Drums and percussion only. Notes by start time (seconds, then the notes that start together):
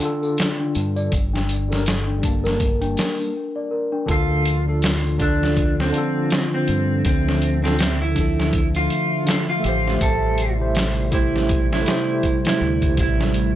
0.00 closed hi-hat, tambourine
0.23 tambourine
0.37 snare, closed hi-hat, tambourine
0.75 closed hi-hat, tambourine
0.97 tambourine
1.12 kick, closed hi-hat, tambourine
1.35 snare
1.49 closed hi-hat, tambourine
1.72 snare, tambourine
1.86 snare, closed hi-hat, tambourine
2.23 kick, closed hi-hat, tambourine
2.45 snare, tambourine
2.60 kick, closed hi-hat, tambourine
2.82 closed hi-hat
2.97 snare, open hi-hat, tambourine
3.19 tambourine
4.08 kick, closed hi-hat
4.45 closed hi-hat
4.82 snare, open hi-hat
5.20 kick, closed hi-hat
5.43 snare
5.57 kick, closed hi-hat
5.80 snare
5.94 closed hi-hat
6.30 snare, closed hi-hat
6.68 closed hi-hat
7.05 kick, closed hi-hat
7.28 snare
7.42 closed hi-hat
7.65 snare
7.79 snare, closed hi-hat
8.16 kick, closed hi-hat
8.40 snare
8.53 kick, closed hi-hat
8.75 closed hi-hat
8.90 closed hi-hat
9.27 snare, closed hi-hat
9.64 closed hi-hat
9.88 snare
10.01 kick, closed hi-hat
10.38 closed hi-hat
10.75 snare, open hi-hat
11.12 kick, closed hi-hat
11.36 snare
11.49 kick, closed hi-hat
11.73 snare
11.86 snare, closed hi-hat
12.23 kick, closed hi-hat
12.45 snare, closed hi-hat
12.82 kick, closed hi-hat
12.97 kick, closed hi-hat
13.21 snare
13.34 closed hi-hat